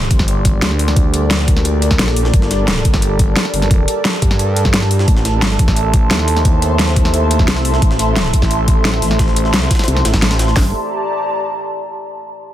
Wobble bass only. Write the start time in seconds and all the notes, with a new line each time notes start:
1.99 A#1
2.34 G1
4.22 G2
5.08 A1
7.48 C2
7.82 A1
8.85 A1
9.88 C2
10.05 A1
10.22 A1
10.56 G1